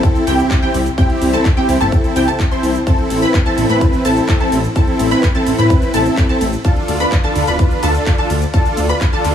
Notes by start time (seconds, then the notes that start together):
Already playing: C4 E4 A4 A5
0.03 kick, closed hi-hat, shaker
0.15 closed hi-hat, shaker
0.27 C2 C4 E4 G4 G5, open hi-hat, shaker
0.39 closed hi-hat, shaker
0.51 kick, clap, closed hi-hat, shaker
0.62 C4 E4 G4 G5, closed hi-hat
0.74 C2, open hi-hat, shaker
0.86 closed hi-hat, shaker
0.98 C4 E4 G4 G5, kick, closed hi-hat, shaker
1.10 closed hi-hat
1.21 C2, open hi-hat, shaker
1.33 C4 E4 A4 A5, closed hi-hat, shaker
1.45 kick, clap, closed hi-hat, shaker
1.57 C4 E4 G4 G5, closed hi-hat
1.69 C2, open hi-hat, shaker
1.81 G1 C4 E4 A4 A5, closed hi-hat, shaker
1.92 kick, closed hi-hat, shaker
2.04 closed hi-hat, shaker
2.16 C2 C4 E4 G4 G5, open hi-hat, shaker
2.28 C4 E4 A4 A5, closed hi-hat, shaker
2.40 kick, clap, closed hi-hat, shaker
2.51 C4 E4 C5 C6, closed hi-hat, shaker
2.63 C2, open hi-hat, shaker
2.75 closed hi-hat, shaker
2.87 C4 E4 A4 A5, kick, closed hi-hat, ride, shaker
2.99 closed hi-hat
3.10 A1, open hi-hat, ride, shaker
3.22 C4 E4 B4 B5, closed hi-hat, shaker
3.34 kick, clap, closed hi-hat, shaker
3.46 C4 E4 A4 A5, closed hi-hat
3.58 A1, open hi-hat, ride, shaker
3.69 A2 C4 E4 B4 B5, closed hi-hat, shaker
3.81 kick, closed hi-hat, ride, shaker
3.93 closed hi-hat, shaker
4.05 A1 C4 E4 A4 A5, open hi-hat, ride, shaker
4.17 closed hi-hat, shaker
4.29 kick, clap, closed hi-hat, ride, shaker
4.40 C4 E4 A4 A5, closed hi-hat
4.52 A1, open hi-hat, ride, shaker
4.64 closed hi-hat, shaker
4.76 C4 E4 A4 A5, kick, closed hi-hat, ride, shaker
4.88 closed hi-hat
4.99 A1, open hi-hat, ride, shaker
5.11 C4 E4 B4 B5, closed hi-hat, shaker
5.23 kick, clap, closed hi-hat, ride, shaker
5.35 C4 E4 A4 A5, closed hi-hat
5.46 A1, open hi-hat, ride, shaker
5.58 A2 C4 E4 B4 B5, closed hi-hat, shaker
5.70 kick, closed hi-hat, ride, shaker
5.82 closed hi-hat, shaker
5.94 A1 C4 E4 A4 A5, open hi-hat, ride, shaker
6.06 closed hi-hat, shaker
6.17 kick, clap, closed hi-hat, ride, shaker
6.29 C4 E4 A4 A5, closed hi-hat
6.41 A1, open hi-hat, ride, shaker
6.53 closed hi-hat, shaker
6.65 D4 F4 A4 A5, kick, closed hi-hat, ride, shaker
6.76 closed hi-hat
6.88 D2, open hi-hat, ride, shaker
7.00 D4 F4 B4 B5, closed hi-hat, shaker
7.12 kick, clap, closed hi-hat, ride, shaker
7.24 D4 F4 A4 A5, closed hi-hat
7.36 D2, open hi-hat, ride, shaker
7.47 D1 D4 F4 B4 B5, closed hi-hat, shaker
7.59 kick, closed hi-hat, ride, shaker
7.71 closed hi-hat, shaker
7.83 D2 D4 F4 A4 A5, open hi-hat, ride, shaker
7.95 closed hi-hat, shaker
8.06 kick, clap, closed hi-hat, ride, shaker
8.18 D4 F4 A4 A5, closed hi-hat
8.30 D2, open hi-hat, ride, shaker
8.42 closed hi-hat, shaker
8.54 D4 F4 A4 A5, kick, closed hi-hat, ride, shaker
8.65 closed hi-hat, shaker
8.77 D2, open hi-hat, ride, shaker
8.89 D4 F4 B4 B5, closed hi-hat, shaker
9.01 kick, clap, closed hi-hat, shaker
9.13 D4 F4 A4 A5, closed hi-hat
9.25 D2, clap, open hi-hat, ride, shaker